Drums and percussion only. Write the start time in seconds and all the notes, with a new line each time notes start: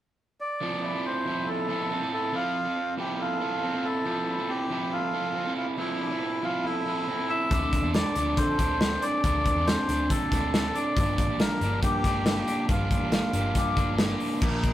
7.51 kick, closed hi-hat
7.73 kick, closed hi-hat
7.94 snare, closed hi-hat
8.16 closed hi-hat
8.37 kick, closed hi-hat
8.59 kick, closed hi-hat
8.81 snare, closed hi-hat
9.02 closed hi-hat
9.24 kick, closed hi-hat
9.46 kick, closed hi-hat
9.68 snare, closed hi-hat
9.89 closed hi-hat
10.10 kick, closed hi-hat
10.32 kick, snare, closed hi-hat
10.54 snare, closed hi-hat
10.75 closed hi-hat
10.97 kick, closed hi-hat
11.18 kick, closed hi-hat
11.40 snare, closed hi-hat
11.61 closed hi-hat
11.83 kick, closed hi-hat
12.04 kick, snare, closed hi-hat
12.26 snare, closed hi-hat
12.48 closed hi-hat
12.69 kick, closed hi-hat
12.91 kick, closed hi-hat
13.12 snare, closed hi-hat
13.33 closed hi-hat
13.55 kick, closed hi-hat
13.77 kick, closed hi-hat
13.98 snare, closed hi-hat
14.20 open hi-hat
14.42 kick, crash
14.64 kick, closed hi-hat